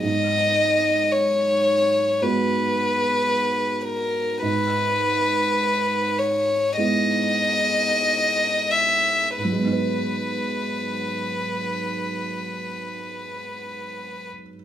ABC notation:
X:1
M:4/4
L:1/8
Q:1/4=49
K:G#m
V:1 name="Violin"
d2 c2 B3 A | B3 c d3 e | B8 |]
V:2 name="Upright piano"
G,,4 [G,B,F]4 | G,,4 [G,B,E]4 | [G,,F,G,B,DB]8 |]